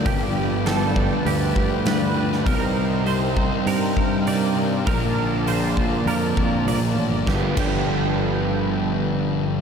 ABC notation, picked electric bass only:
X:1
M:4/4
L:1/16
Q:1/4=100
K:Gm
V:1 name="Picked electric bass" clef=bass
G,,,8 D,,2 D,,6 | C,,8 G,,2 G,,6 | B,,,8 F,,2 F,,2 C,, B,,, A,,, G,,, | G,,, z G,,,12- G,,,2 |]